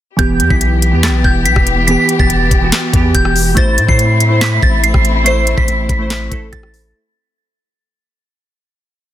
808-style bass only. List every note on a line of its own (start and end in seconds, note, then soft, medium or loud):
0.19 0.41 E1 loud
0.40 0.50 E2 loud
0.50 0.94 B1 loud
0.93 1.10 E2 loud
1.09 1.24 B1 loud
1.24 1.47 E1 loud
1.46 1.56 B1 loud
1.56 1.97 E1 medium
2.19 2.30 E1 loud
2.30 2.50 E1 loud
2.51 2.71 E1 loud
2.93 3.14 E2 loud
3.15 3.55 E1 loud
3.57 3.79 A1 loud
3.78 3.88 A2 loud
3.89 4.60 A2 loud
4.63 4.93 A1 loud
4.94 5.55 A1 loud
5.58 5.68 A1 loud
5.68 5.88 A1 loud
5.89 6.30 A1 loud
6.32 6.52 A1 loud
6.53 6.93 A1 loud